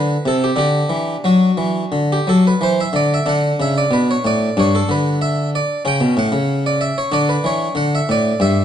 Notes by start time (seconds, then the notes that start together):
Already playing: D3 E4 B4
0.26 C3 A4
0.44 G4
0.56 D3 D4 G4
0.89 E3
1.24 F#3 F#4
1.57 E3
1.92 D3
2.12 G4
2.27 F#3 A4
2.47 B4
2.61 E3 C5
2.80 E5
2.93 D3 D5
3.14 E5
3.26 D3 D4 F#5
3.60 C#3 E5
3.78 D5
3.91 B2 B4
4.11 C#5
4.25 A2 D5
4.57 G2 D4 C#5
4.75 A4
4.89 D3 B4
5.22 E5
5.55 D5
5.85 C#3 C#4 G5
6.01 B2
6.17 A2 F#5
6.32 C#3
6.66 D5
6.81 E5
6.98 C#5
7.12 D3 D4 D5
7.29 B4
7.44 E3 C#5
7.75 D3 F#5
7.95 E5
8.09 A2 D5
8.40 G2 E5